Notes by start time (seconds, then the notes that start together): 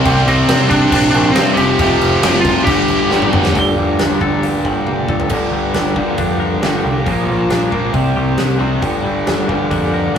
0.05 C2 C3 G3 C4, kick, crash
0.27 C2 C4, crash
0.48 C3 G3 C4, snare, crash
0.69 C3 G3 C4 D4, kick, crash
0.92 A#1 C3 G3 C4, kick, crash
1.11 A#1 D4, crash
1.32 C3 C4, crash
1.36 G2 G3 C4, snare
1.53 F1 G4, crash
1.57 F2 C3 F3
1.79 F1 F2 C3 F3, kick, crash
2.00 F1, crash
2.22 F#1 F2 C3 F3, snare, crash
2.40 F4
2.45 F2 C3 F3, kick, crash
2.64 G1 G2 D3 G3 G4, kick, crash
2.88 G1, crash
3.10 G1 G2 D3 G3, snare
3.22 mid tom
3.31 G2 D3 G3, mid tom
3.45 snare
3.53 G1 G2 D3 G3, kick, open hi-hat
3.77 G1 A#3
3.99 G1 D4, snare, open hi-hat
4.21 G1 A4, kick
4.42 G1 A#3, open hi-hat
4.65 G1 G3, kick
4.86 G1 A#3, high tom
5.08 G1 A4, kick
5.20 floor tom
5.29 G1 G2 D3 G3, kick, crash
5.52 G1 G3
5.74 G1 D4, snare, open hi-hat
5.96 G1 G2 D3 G3 A#3, kick
6.18 F2 D4, kick, open hi-hat
6.40 A#4
6.61 G1 G2 D3 G3 D4, snare, open hi-hat
6.83 C2 A#3
7.04 A#1 A#2 F3 A#3, kick, open hi-hat
7.28 A#1 F3
7.50 A#1 D4, snare, open hi-hat
7.71 A#1 A#2 F3 A#3, kick
7.92 C2 C3 G3 C4, kick, open hi-hat
8.16 C2 G4
8.38 C2 D4, snare, open hi-hat
8.58 C2 C3 G3 C4
8.80 G1 G2 D3 G3, kick, open hi-hat
9.04 G1 G3
9.26 G1 D4, snare, open hi-hat
9.48 G1 G2 D3 G3 A#3, kick
9.71 F2 D4, kick, open hi-hat
9.93 A#4
10.14 G1 D4